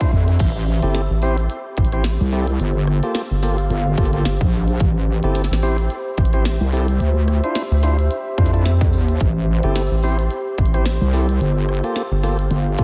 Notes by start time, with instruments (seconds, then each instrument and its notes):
Already playing: ambient pad G4 C5 E5, noise sweep
0.01 tonewheel organ D4 E4 F4 C5, kick
0.12 wobble bass F2, open hi-hat
0.28 closed hi-hat
0.39 wobble bass A1, kick, closed hi-hat, crash
0.82 analog synth bass G1, tonewheel organ C4 E4 G4 A4, closed hi-hat
0.95 snare, closed hi-hat
1.10 analog synth bass A1
1.22 tonewheel organ C4 E4 G4 C5, open hi-hat
1.38 closed hi-hat
1.50 closed hi-hat
1.77 analog synth bass A1, kick, closed hi-hat
1.85 closed hi-hat
1.92 tonewheel organ C4 E4 G4 C5, cross-stick, closed hi-hat
2.04 snare, closed hi-hat
2.21 wobble bass C2
2.32 tonewheel organ C4 E4 G4 A4, open hi-hat
2.47 closed hi-hat
2.60 wobble bass G1, closed hi-hat
2.87 ambient pad F5, cross-stick
3.03 tonewheel organ A#3 F4 G4 A4, closed hi-hat
3.15 snare, closed hi-hat
3.31 analog synth bass G1
3.43 tonewheel organ A#3 F4 G4 A4, cross-stick, snare, open hi-hat
3.58 closed hi-hat
3.70 wobble bass G1, closed hi-hat
3.98 wobble bass G1, tonewheel organ A#3 F4 G4 A4, kick, closed hi-hat
4.06 closed hi-hat
4.13 tonewheel organ A#3 F4 G4 A4, closed hi-hat
4.25 analog synth bass G1, snare, closed hi-hat
4.41 wobble bass A#1, kick
4.53 open hi-hat
4.68 closed hi-hat
4.80 wobble bass A1, kick, closed hi-hat
5.23 analog synth bass G1, tonewheel organ C4 E4 G4 A4, closed hi-hat
5.35 snare, closed hi-hat
5.44 snare
5.51 analog synth bass A1, snare
5.57 ambient pad E5
5.63 tonewheel organ C4 E4 G4 C5, open hi-hat
5.78 closed hi-hat
5.90 closed hi-hat
6.18 analog synth bass A1, kick, closed hi-hat
6.25 closed hi-hat
6.33 tonewheel organ C4 E4 G4 C5, cross-stick, closed hi-hat
6.45 snare, closed hi-hat
6.61 wobble bass C2
6.72 tonewheel organ C4 E4 G4 A4, open hi-hat
6.88 closed hi-hat
7.00 wobble bass D2, closed hi-hat
7.28 cross-stick, closed hi-hat
7.44 tonewheel organ D4 E4 F4 C5, closed hi-hat
7.55 snare, closed hi-hat
7.71 analog synth bass D2
7.83 tonewheel organ D4 E4 F4 C5, cross-stick, snare, open hi-hat
7.99 closed hi-hat
8.11 closed hi-hat
8.38 wobble bass F2, tonewheel organ D4 E4 F4 C5, kick, closed hi-hat
8.46 closed hi-hat
8.53 tonewheel organ D4 E4 F4 A4, closed hi-hat
8.66 snare, closed hi-hat
8.81 kick
8.93 wobble bass E2, open hi-hat
9.09 closed hi-hat
9.20 wobble bass A1, kick, closed hi-hat
9.63 analog synth bass G1, tonewheel organ C4 E4 G4 A4, closed hi-hat
9.76 snare, closed hi-hat
9.91 analog synth bass A1
10.03 tonewheel organ C4 E4 G4 C5, open hi-hat
10.19 closed hi-hat
10.31 closed hi-hat
10.58 analog synth bass A1, kick, closed hi-hat
10.66 closed hi-hat
10.74 tonewheel organ C4 E4 G4 C5, cross-stick, closed hi-hat
10.86 snare, closed hi-hat
11.01 wobble bass C2
11.13 tonewheel organ C4 E4 G4 A4, open hi-hat
11.29 closed hi-hat
11.41 wobble bass G1, closed hi-hat
11.69 cross-stick
11.84 tonewheel organ A#3 F4 G4 A4, closed hi-hat
11.92 ambient pad F5, snare, closed hi-hat
12.12 analog synth bass G1
12.23 tonewheel organ A#3 F4 G4 A4, cross-stick, snare, open hi-hat
12.39 closed hi-hat
12.51 wobble bass G1, closed hi-hat
12.78 wobble bass G1, tonewheel organ A#3 F4 G4 A4, kick, closed hi-hat